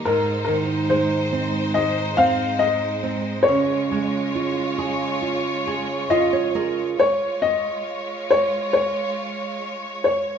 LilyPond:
<<
  \new Staff \with { instrumentName = "Felt piano" } { \time 4/4 \key des \major \tempo 4 = 69 bes'8 bes'8 c''4 ees''8 f''8 ees''4 | des''2. ees''4 | des''8 ees''4 des''8 des''4. des''8 | }
  \new Staff \with { instrumentName = "String section" } { \time 4/4 \key des \major << { <ees' c''>1 | <f' des''>1 | <f' des''>1 | } \\ { aes1~ | aes1 | aes1 | } >> }
  \new Staff \with { instrumentName = "Nylon-string guitar" } { \time 4/4 \key des \major << { r1 | r2. f''16 des''16 bes'8 | r1 | } \\ { aes,8 ees8 aes8 c'8 aes8 c'8 aes8 c'8 | des8 aes8 f'8 aes'8 f'8 aes'8 f'8 aes'8 | r1 | } >> }
>>